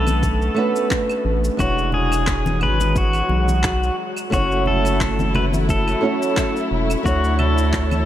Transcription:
Already playing: analog synth bass B1, nylon-string guitar A3 C#4 D4 F#4 B4, string section A3 B3, pedal steel guitar A4
0.07 high conga, claves, shaker
0.23 kick, shaker
0.42 shaker
0.55 nylon-string guitar A3 C#4 D4 F#4, claves
0.59 nylon-string guitar B4
0.76 shaker
0.91 kick, clap, shaker
1.10 claves, shaker
1.25 analog synth bass A1
1.44 shaker
1.57 analog synth bass E1, string section F#3 G#3, nylon-string guitar G#3 D4 E4 F#4, pedal steel guitar F#4, kick, claves, shaker
1.62 nylon-string guitar C#5
1.78 shaker
1.92 pedal steel guitar G#4, low conga
2.12 claves, shaker
2.27 kick, clap, shaker
2.46 high conga, shaker
2.61 analog synth bass G#1, pedal steel guitar B4, low conga, claves
2.80 high conga, shaker
2.96 pedal steel guitar F#4, kick, shaker
3.13 claves, shaker
3.29 analog synth bass B1, high conga
3.48 high conga, shaker
3.63 kick, clap, claves, shaker
3.83 shaker
4.17 claves, shaker
4.30 analog synth bass F#1, string section F#3 A3 E4, nylon-string guitar A3 C#4 E4 F#4, pedal steel guitar F#4, kick, claves, shaker
4.34 nylon-string guitar C#5
4.52 shaker
4.66 pedal steel guitar A4, low conga
4.85 claves, shaker
5.01 kick, clap, shaker
5.19 high conga, shaker
5.35 pedal steel guitar B4, low conga, claves
5.53 high conga, shaker
5.69 pedal steel guitar A4, kick, shaker
5.88 claves, shaker
6.01 nylon-string guitar A3 C#4 E4 F#4
6.05 nylon-string guitar C#5
6.22 shaker
6.37 kick, clap, claves, shaker
6.56 shaker
6.71 analog synth bass E1
6.90 claves, shaker
7.03 analog synth bass D2, string section D3 C#5, nylon-string guitar A3 D4 E4 F#4, pedal steel guitar F#4, kick, shaker
7.07 nylon-string guitar C#5
7.24 shaker
7.39 pedal steel guitar A4, low conga, claves
7.58 shaker
7.73 kick, clap, shaker
7.91 high conga, claves, shaker

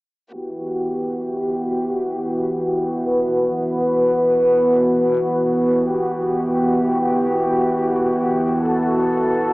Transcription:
0.33 string section E3 B3 F#4 G4, closed hi-hat
0.50 closed hi-hat
0.68 closed hi-hat
0.85 closed hi-hat
1.02 closed hi-hat
1.20 closed hi-hat
1.37 closed hi-hat
1.54 closed hi-hat
1.72 closed hi-hat
1.89 closed hi-hat
2.06 closed hi-hat
2.24 closed hi-hat
2.41 closed hi-hat
2.58 closed hi-hat
2.76 closed hi-hat
2.93 closed hi-hat
3.10 string section B4, closed hi-hat
3.28 closed hi-hat
3.45 closed hi-hat
3.62 closed hi-hat
3.80 closed hi-hat
3.97 closed hi-hat
4.14 closed hi-hat
4.32 closed hi-hat
4.49 closed hi-hat
4.66 closed hi-hat
4.84 closed hi-hat
5.01 closed hi-hat
5.18 closed hi-hat
5.36 closed hi-hat
5.53 closed hi-hat
5.71 closed hi-hat
5.88 string section G4, closed hi-hat
6.05 closed hi-hat
6.23 closed hi-hat
6.40 closed hi-hat
6.57 closed hi-hat
6.75 closed hi-hat
6.92 closed hi-hat
7.09 closed hi-hat
7.27 closed hi-hat
7.44 closed hi-hat
7.61 closed hi-hat
7.79 closed hi-hat
7.96 closed hi-hat
8.13 closed hi-hat
8.31 closed hi-hat
8.48 closed hi-hat
8.65 string section A4, closed hi-hat
8.83 closed hi-hat
9.00 closed hi-hat
9.17 closed hi-hat
9.35 closed hi-hat

